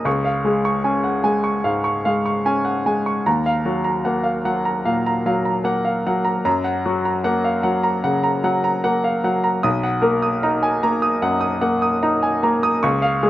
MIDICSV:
0, 0, Header, 1, 2, 480
1, 0, Start_track
1, 0, Tempo, 798935
1, 35, Time_signature, 4, 2, 24, 8
1, 7990, End_track
2, 0, Start_track
2, 0, Title_t, "Grand piano"
2, 0, Program_c, 0, 0
2, 0, Control_c, 0, 64, 127
2, 30, Note_on_c, 0, 37, 55
2, 35, Note_on_c, 0, 85, 46
2, 46, Control_c, 0, 64, 0
2, 146, Control_c, 0, 64, 127
2, 148, Note_on_c, 0, 77, 42
2, 228, Note_off_c, 0, 85, 0
2, 267, Note_on_c, 0, 56, 38
2, 270, Note_on_c, 0, 68, 41
2, 345, Note_off_c, 0, 77, 0
2, 391, Note_on_c, 0, 85, 45
2, 466, Note_off_c, 0, 68, 0
2, 506, Note_on_c, 0, 80, 41
2, 507, Note_on_c, 0, 61, 41
2, 586, Note_off_c, 0, 85, 0
2, 625, Note_on_c, 0, 78, 40
2, 657, Note_off_c, 0, 56, 0
2, 704, Note_off_c, 0, 80, 0
2, 743, Note_on_c, 0, 56, 38
2, 744, Note_on_c, 0, 80, 44
2, 751, Note_off_c, 0, 78, 0
2, 863, Note_on_c, 0, 85, 44
2, 896, Note_off_c, 0, 61, 0
2, 943, Note_off_c, 0, 80, 0
2, 970, Note_off_c, 0, 37, 0
2, 986, Note_on_c, 0, 44, 37
2, 986, Note_on_c, 0, 77, 46
2, 1063, Note_off_c, 0, 85, 0
2, 1106, Note_on_c, 0, 85, 43
2, 1135, Note_off_c, 0, 56, 0
2, 1185, Note_off_c, 0, 77, 0
2, 1233, Note_on_c, 0, 77, 47
2, 1235, Note_on_c, 0, 56, 39
2, 1306, Note_off_c, 0, 85, 0
2, 1356, Note_on_c, 0, 85, 44
2, 1379, Note_off_c, 0, 44, 0
2, 1430, Note_off_c, 0, 77, 0
2, 1474, Note_on_c, 0, 61, 43
2, 1477, Note_on_c, 0, 80, 45
2, 1552, Note_off_c, 0, 85, 0
2, 1590, Note_on_c, 0, 78, 38
2, 1624, Note_off_c, 0, 56, 0
2, 1672, Note_off_c, 0, 80, 0
2, 1716, Note_off_c, 0, 78, 0
2, 1717, Note_on_c, 0, 56, 40
2, 1720, Note_on_c, 0, 80, 44
2, 1840, Note_on_c, 0, 85, 41
2, 1861, Note_off_c, 0, 61, 0
2, 1911, Note_off_c, 0, 80, 0
2, 1958, Note_off_c, 0, 56, 0
2, 1959, Note_off_c, 0, 85, 0
2, 1960, Note_on_c, 0, 39, 53
2, 1960, Note_on_c, 0, 82, 48
2, 1969, Control_c, 0, 64, 0
2, 2052, Control_c, 0, 64, 127
2, 2079, Note_on_c, 0, 77, 46
2, 2150, Note_off_c, 0, 82, 0
2, 2195, Note_on_c, 0, 54, 38
2, 2197, Note_on_c, 0, 66, 42
2, 2270, Note_off_c, 0, 77, 0
2, 2309, Note_on_c, 0, 82, 48
2, 2389, Note_off_c, 0, 66, 0
2, 2433, Note_on_c, 0, 78, 46
2, 2438, Note_on_c, 0, 58, 40
2, 2506, Note_off_c, 0, 82, 0
2, 2544, Note_on_c, 0, 77, 43
2, 2580, Note_off_c, 0, 54, 0
2, 2627, Note_off_c, 0, 78, 0
2, 2671, Note_off_c, 0, 77, 0
2, 2674, Note_on_c, 0, 54, 37
2, 2675, Note_on_c, 0, 78, 48
2, 2795, Note_on_c, 0, 82, 47
2, 2823, Note_off_c, 0, 58, 0
2, 2870, Note_off_c, 0, 78, 0
2, 2895, Note_off_c, 0, 39, 0
2, 2916, Note_on_c, 0, 46, 43
2, 2917, Note_on_c, 0, 77, 46
2, 2990, Note_off_c, 0, 82, 0
2, 3042, Note_on_c, 0, 82, 51
2, 3062, Note_off_c, 0, 54, 0
2, 3111, Note_off_c, 0, 77, 0
2, 3159, Note_on_c, 0, 54, 44
2, 3161, Note_on_c, 0, 77, 45
2, 3234, Note_off_c, 0, 82, 0
2, 3276, Note_on_c, 0, 82, 44
2, 3303, Note_off_c, 0, 46, 0
2, 3352, Note_off_c, 0, 77, 0
2, 3389, Note_on_c, 0, 58, 44
2, 3393, Note_on_c, 0, 78, 48
2, 3470, Note_off_c, 0, 82, 0
2, 3513, Note_on_c, 0, 77, 39
2, 3543, Note_off_c, 0, 54, 0
2, 3588, Note_off_c, 0, 78, 0
2, 3636, Note_off_c, 0, 77, 0
2, 3644, Note_on_c, 0, 78, 49
2, 3645, Note_on_c, 0, 54, 42
2, 3752, Note_on_c, 0, 82, 49
2, 3778, Note_off_c, 0, 58, 0
2, 3834, Note_off_c, 0, 78, 0
2, 3867, Note_off_c, 0, 82, 0
2, 3875, Note_on_c, 0, 42, 61
2, 3876, Note_on_c, 0, 82, 53
2, 3882, Note_off_c, 0, 54, 0
2, 3891, Control_c, 0, 64, 0
2, 3971, Control_c, 0, 64, 127
2, 3992, Note_on_c, 0, 78, 48
2, 4070, Note_off_c, 0, 82, 0
2, 4119, Note_on_c, 0, 54, 45
2, 4119, Note_on_c, 0, 66, 50
2, 4187, Note_off_c, 0, 78, 0
2, 4238, Note_on_c, 0, 82, 49
2, 4311, Note_off_c, 0, 66, 0
2, 4351, Note_on_c, 0, 78, 53
2, 4353, Note_on_c, 0, 58, 49
2, 4430, Note_off_c, 0, 82, 0
2, 4472, Note_on_c, 0, 77, 46
2, 4502, Note_off_c, 0, 54, 0
2, 4547, Note_off_c, 0, 78, 0
2, 4586, Note_on_c, 0, 78, 52
2, 4588, Note_on_c, 0, 54, 42
2, 4595, Note_off_c, 0, 77, 0
2, 4707, Note_on_c, 0, 82, 51
2, 4740, Note_off_c, 0, 58, 0
2, 4784, Note_off_c, 0, 78, 0
2, 4812, Note_off_c, 0, 42, 0
2, 4829, Note_on_c, 0, 49, 46
2, 4829, Note_on_c, 0, 78, 53
2, 4904, Note_off_c, 0, 82, 0
2, 4948, Note_on_c, 0, 82, 53
2, 4976, Note_off_c, 0, 54, 0
2, 5025, Note_off_c, 0, 78, 0
2, 5068, Note_on_c, 0, 54, 47
2, 5072, Note_on_c, 0, 78, 52
2, 5144, Note_off_c, 0, 82, 0
2, 5191, Note_on_c, 0, 82, 49
2, 5217, Note_off_c, 0, 49, 0
2, 5267, Note_off_c, 0, 78, 0
2, 5311, Note_on_c, 0, 58, 46
2, 5311, Note_on_c, 0, 78, 53
2, 5387, Note_off_c, 0, 82, 0
2, 5432, Note_on_c, 0, 77, 42
2, 5457, Note_off_c, 0, 54, 0
2, 5507, Note_off_c, 0, 78, 0
2, 5550, Note_on_c, 0, 54, 44
2, 5554, Note_on_c, 0, 78, 49
2, 5555, Note_off_c, 0, 77, 0
2, 5670, Note_on_c, 0, 82, 48
2, 5699, Note_off_c, 0, 58, 0
2, 5748, Note_off_c, 0, 78, 0
2, 5788, Note_on_c, 0, 87, 56
2, 5790, Note_on_c, 0, 35, 62
2, 5794, Note_off_c, 0, 54, 0
2, 5794, Note_off_c, 0, 82, 0
2, 5809, Control_c, 0, 64, 0
2, 5901, Control_c, 0, 64, 127
2, 5908, Note_on_c, 0, 78, 48
2, 5984, Note_off_c, 0, 87, 0
2, 6019, Note_on_c, 0, 58, 50
2, 6019, Note_on_c, 0, 70, 47
2, 6103, Note_off_c, 0, 78, 0
2, 6143, Note_on_c, 0, 87, 49
2, 6218, Note_off_c, 0, 70, 0
2, 6267, Note_on_c, 0, 82, 50
2, 6268, Note_on_c, 0, 63, 51
2, 6339, Note_off_c, 0, 87, 0
2, 6384, Note_on_c, 0, 80, 46
2, 6408, Note_off_c, 0, 58, 0
2, 6460, Note_off_c, 0, 82, 0
2, 6507, Note_off_c, 0, 80, 0
2, 6507, Note_on_c, 0, 82, 53
2, 6508, Note_on_c, 0, 58, 45
2, 6622, Note_on_c, 0, 87, 52
2, 6649, Note_off_c, 0, 63, 0
2, 6698, Note_off_c, 0, 82, 0
2, 6720, Note_off_c, 0, 35, 0
2, 6740, Note_on_c, 0, 42, 49
2, 6743, Note_on_c, 0, 78, 54
2, 6815, Note_off_c, 0, 87, 0
2, 6853, Note_on_c, 0, 87, 53
2, 6889, Note_off_c, 0, 58, 0
2, 6936, Note_off_c, 0, 78, 0
2, 6978, Note_on_c, 0, 58, 48
2, 6978, Note_on_c, 0, 78, 52
2, 7052, Note_off_c, 0, 87, 0
2, 7102, Note_on_c, 0, 87, 50
2, 7127, Note_off_c, 0, 42, 0
2, 7175, Note_off_c, 0, 78, 0
2, 7226, Note_on_c, 0, 63, 51
2, 7226, Note_on_c, 0, 82, 51
2, 7297, Note_off_c, 0, 87, 0
2, 7346, Note_on_c, 0, 80, 41
2, 7368, Note_off_c, 0, 58, 0
2, 7419, Note_off_c, 0, 82, 0
2, 7467, Note_off_c, 0, 80, 0
2, 7467, Note_on_c, 0, 58, 48
2, 7470, Note_on_c, 0, 82, 49
2, 7589, Note_on_c, 0, 87, 55
2, 7611, Note_off_c, 0, 63, 0
2, 7661, Note_off_c, 0, 82, 0
2, 7707, Note_on_c, 0, 85, 58
2, 7708, Note_off_c, 0, 58, 0
2, 7709, Note_off_c, 0, 87, 0
2, 7711, Note_on_c, 0, 37, 63
2, 7718, Control_c, 0, 64, 0
2, 7807, Control_c, 0, 64, 127
2, 7823, Note_on_c, 0, 77, 55
2, 7901, Note_off_c, 0, 85, 0
2, 7947, Note_on_c, 0, 68, 48
2, 7949, Note_on_c, 0, 56, 45
2, 7990, Note_off_c, 0, 37, 0
2, 7990, Note_off_c, 0, 56, 0
2, 7990, Note_off_c, 0, 68, 0
2, 7990, Note_off_c, 0, 77, 0
2, 7990, End_track
0, 0, End_of_file